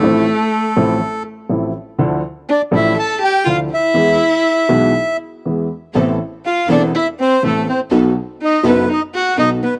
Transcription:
X:1
M:4/4
L:1/8
Q:1/4=122
K:Am
V:1 name="Bandoneon"
A4- A z3 | z2 d e a g f e- | e4- e z3 | z2 f d e c A c |
z2 ^d B d ^f d B |]
V:2 name="Violin"
A,4- A, z3 | z2 D E A G F E- | E4- E z3 | z2 F D E C A, C |
z2 ^D B, D ^F D B, |]
V:3 name="String section"
z8 | z8 | z8 | [B,CA] z2 [B,CA] z2 [B,CA] z |
[B,^DA] z2 [B,DA] z2 [B,DA] z |]
V:4 name="Upright piano" clef=bass
[A,,,A,,F,CEA] z2 [A,,,A,,F,CEA] z2 [A,,,A,,F,CEA] z | [D,,D,F,DEA] z2 [A,,,A,,F,DEA] z2 [D,,D,F,DEA] z | [E,,E,^G,B,^G] z2 [B,,,B,,E,G,B,G] z2 [E,,E,G,B,G] z | [A,,,A,,E,B,CA] z2 [E,,,E,,E,B,CA] z2 [A,,,A,,E,B,CA] z |
[B,,,B,,^F,B,^DA] z2 [^F,,,^F,,F,B,DA] z2 [B,,,B,,F,B,DA] z |]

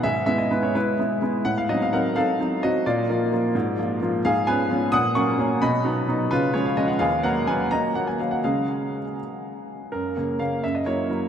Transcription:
X:1
M:6/8
L:1/16
Q:3/8=86
K:Bbphr
V:1 name="Grand piano"
[^G=e]2 e _e =B d [=EB]2 z4 | ^f =f e f [B^f]2 [=A=f]4 [^Fe]2 | [F=d]12 | [K:F#] [Ge]2 [Bg]4 [fd']2 [fc']4 |
[db]6 [EB]2 c e d f | [Ge]2 [Af]2 [Bg]2 [da]2 f g e f | [Ge]6 z6 | A4 e2 =e d c4 |]
V:2 name="Grand piano"
^G,,2 [^G,=B,=E]2 [G,B,E]2 [G,B,]2 [G,B,E]2 [G,B,E]2 | =A,,2 [^F,=CE]2 [F,CE]2 [F,CE]2 [F,CE]2 [F,CE]2 | B,,2 [F,B,F]2 [F,B,F]2 A,,2 [F,B,F]2 [F,B,F]2 | [K:F#] G,,2 [E,B,C]2 [E,B,C]2 A,,2 [F,A,C]2 [F,A,C]2 |
B,,2 [F,B,D]2 [F,B,D]2 C,2 [E,G,C]2 [E,G,C]2 | D,,2 [F,A,]2 [F,A,]2 [F,A,]2 [F,A,]2 [F,A,]2 | [C,G,C]6 z6 | F,,2 [C,A,C]2 [C,A,C]2 F,,2 [F,A,=E]2 [F,A,E]2 |]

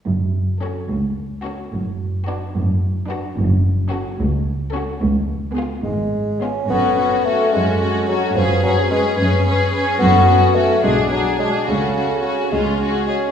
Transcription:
X:1
M:6/8
L:1/8
Q:3/8=72
K:F#m
V:1 name="Violin section"
z2 A z2 A | z2 B z2 B | z2 A z2 A | z2 G z2 G |
A A A A A A | B B B B B B | A A A G G G | A A A G G G |]
V:2 name="Violin section"
z2 F z2 F | z2 F z2 F | z2 F z2 F | z2 ^E z2 E |
F F F F F F | G G G G G G | F F F G G G | F F F ^E F G |]
V:3 name="Viola section"
z2 C z2 C | z2 D z2 D | z2 C z2 C | z2 B, z2 B, |
C C C C C C | C C C C C C | C C C D D D | C C C C C C |]
V:4 name="Bassoon" clef=bass
z6 | z6 | z6 | z3 G,2 C |
B,2 A, G,2 F, | ^E, F, G, z3 | B,2 A, G, F, G, | C,3 G,2 C |]
V:5 name="Cello section" clef=bass
F,,3 C,,3 | F,,3 F,,3 | F,,3 C,,3 | C,,3 G,,3 |
F,,3 F,,3 | F,,3 F,,3 | F,,3 B,,3 | C,,3 C,,3 |]
V:6 name="Double bass section" clef=bass
F,,,3 C,,3 | F,,,3 F,,,3 | F,,,3 C,,3 | C,,3 G,,,3 |
F,,,2 z4 | F,,,2 z4 | F,,,2 z B,,,2 z | C,,2 z C,,2 z |]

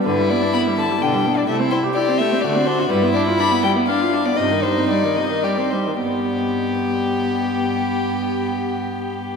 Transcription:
X:1
M:3/4
L:1/16
Q:1/4=118
K:G
V:1 name="Violin"
B2 d2 b2 a2 g3 d | e2 c2 d2 e2 d2 c2 | B2 d2 b2 g2 =f3 d | _e2 c2 d2 e2 d2 c2 |
G12- | G12 |]
V:2 name="Violin"
E8 D4 | E4 G4 F4 | E8 D4 | _E8 G2 z2 |
G12- | G12 |]
V:3 name="Viola"
D, G, B, D B, G, D, G, D, G, B, D | A, C E G E C A, C A, C D F | G, B, D =F D B, G, B, D F D B, | C, _E, G, C G, E, C, E, G, C G, E, |
B,12- | B,12 |]
V:4 name="Cello" clef=bass
G,,4 z4 B,,4 | C,4 z4 D,4 | G,,4 z8 | G,,4 z8 |
G,,12- | G,,12 |]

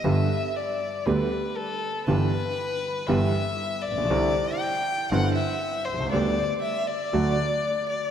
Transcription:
X:1
M:4/4
L:1/16
Q:1/4=118
K:G
V:1 name="Violin"
e4 d4 B4 A4 | B8 e6 d2- | d4 g4 f2 e4 c2 | d4 e2 d8 d2 |]
V:2 name="Grand piano" clef=bass
[G,,,G,,D,G,B,G]2 z6 [D,,D,G,B,G]2 z6 | [G,,,G,,E,G,B,G]2 z6 [G,,,G,,E,G,B,G]2 z4 z/2 A,,,/2 _B,,,/2 =B,,,/2 | [C,,C,D,G,CE]2 z6 [G,,,G,,D,G,CE]2 z4 z/2 B,,,/2 C,,/2 ^C,,/2 | [D,,D,G,B,G]2 z6 [D,,D,F,A,F]2 z6 |]
V:3 name="Double bass" clef=bass
G,,,2 z6 D,,2 z6 | G,,,2 z6 G,,,2 z4 _B,,,2 | C,,2 z6 G,,,2 z4 C,,2 | D,,2 z6 D,,2 z6 |]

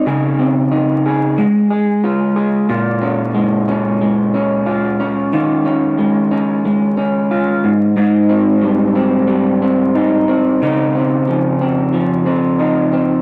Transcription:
X:1
M:4/4
L:1/8
Q:1/4=91
K:Bbdor
V:1 name="Clean electric guitar"
[D,A] C E A A, A F A | [B,,F] D A, D A, D F D | [E,F] D A, D A, D F A,, | [A,,E] C G, C G, C E C |
[D,E] C F, C F, C E C |]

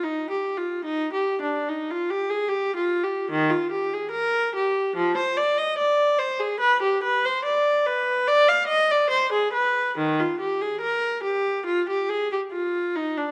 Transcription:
X:1
M:4/4
L:1/16
Q:1/4=73
K:Gphr
V:1 name="Viola"
(3E2 G2 F2 (3E2 G2 D2 E F G A (3G2 F2 G2 | E, F G A B2 G2 F, c d e d2 c A | =B G B c d2 B2 d f e d c A B2 | E, F G A B2 G2 F G A G F2 E D |]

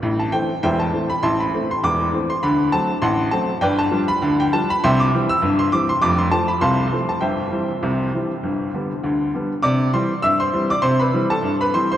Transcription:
X:1
M:2/4
L:1/16
Q:"Swing 16ths" 1/4=100
K:C
V:1 name="Upright piano"
z a g2 [ceg] a2 b | [eac'] b2 c' d'3 c' | b2 a2 [^fac']2 a2 | [Bdg] a2 b2 g a b |
[egc'] d'2 e'2 c' d' c' | d' c' a b [fac']3 a | [ceg]8- | [ceg]6 z2 |
[dd']2 [cc']2 [ee'] [cc']2 [dd'] | [cc'] [Bb]2 [Aa]2 [Bb] [cc'] [cc'] |]
V:2 name="Upright piano" clef=bass
[A,,,A,,]2 [E,A,C]2 [E,,,E,,]2 [E,A,C]2 | [A,,,A,,]2 [E,A,C]2 [E,,,E,,]2 [E,A,C]2 | [D,,D,]2 [^F,A,C]2 [A,,,A,,]2 [F,A,C]2 | [G,,,G,,]2 [F,G,D]2 [D,,D,]2 [F,G,D]2 |
[C,,C,]2 [E,G,C]2 [G,,,G,,]2 [E,G,C]2 | [F,,,F,,]2 [F,A,C]2 [C,,C,]2 [F,A,C]2 | [G,,,G,,]2 [E,G,C]2 [C,,C,]2 [E,G,C]2 | [G,,,G,,]2 [D,G,B,]2 [D,,D,]2 [D,G,B,]2 |
C,2 [E,G,C]2 G,,2 [E,G,C]2 | C,2 [E,G,C]2 G,,2 [E,G,C]2 |]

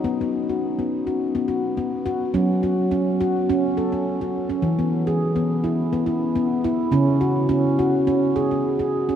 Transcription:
X:1
M:4/4
L:1/16
Q:1/4=105
K:Bmix
V:1 name="Handpan"
z B,2 F2 B,2 F2 B, F2 B,2 F2 | C2 F2 C2 F2 C2 A C2 F2 C | z B,2 G2 B,2 E2 B, E2 B,2 E2 | C2 F2 C2 F2 C2 G C2 G2 C |]
V:2 name="Handpan" clef=bass
B,16 | F,16 | E,16 | C,16 |]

